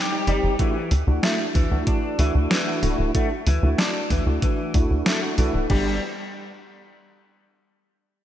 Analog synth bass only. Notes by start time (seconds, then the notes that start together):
0.27 G1
0.43 G1
0.91 D2
1.07 D2
1.55 D2
1.71 D2
2.19 D2
2.35 D2
2.83 D1
2.99 D1
3.47 D2
3.63 D2
4.10 D2
4.26 D2
4.74 D2
4.90 D2
5.38 C2
5.54 D1
5.70 G1